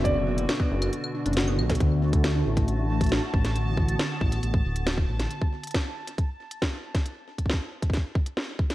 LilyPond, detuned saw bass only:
\new Staff \with { instrumentName = "Detuned saw bass" } { \clef bass \time 4/4 \key d \mixolydian \tempo 4 = 137 fis,,4 r8 fis,,8 r8. fis,,8. b,,8 | d,4. a,,4.~ a,,16 r16 a,,8~ | a,,4 r8 a,,8 a,,8 d,,4 a,,8 | r1 |
r1 | }